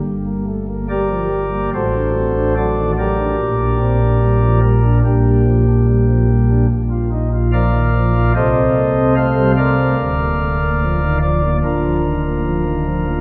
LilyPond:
<<
  \new Staff \with { instrumentName = "Pipe organ" } { \time 4/4 \key g \minor \tempo 4 = 73 r4 <g' bes' d''>4 <fis' a' c''>4 <fis' a' d''>8 <g' bes' d''>8~ | <g' bes' d''>4. bes'8 <bes d' g'>2 | r4 <bes' d'' f''>4 <a' c'' ees''>4 <a' c'' f''>8 <bes' d'' f''>8~ | <bes' d'' f''>4. d''8 <d' f' bes'>2 | }
  \new Staff \with { instrumentName = "Pipe organ" } { \clef bass \time 4/4 \key g \minor << { g,16 bes16 a16 bes16 g16 f16 g16 bes16 a,16 d'16 c'16 d'16 fis16 ees16 fis16 d'16 | bes,16 d'16 c'16 d'16 g16 f16 g16 d'16 bes,16 g16 f16 d'16 g16 f16 g16 d'16 | bes,16 f'16 ees'16 f'16 f16 ees16 f16 f'16 c16 c'16 bes16 c'16 a16 g16 a16 c'16 | d,16 bes16 a16 bes16 f16 ees16 f16 bes16 d,16 f16 ees16 bes16 f16 ees16 f16 bes16 | } \\ { g,,2 a,,2 | bes,,2 bes,,2 | bes,,2 c,2 | d,,2 d,,2 | } >> }
>>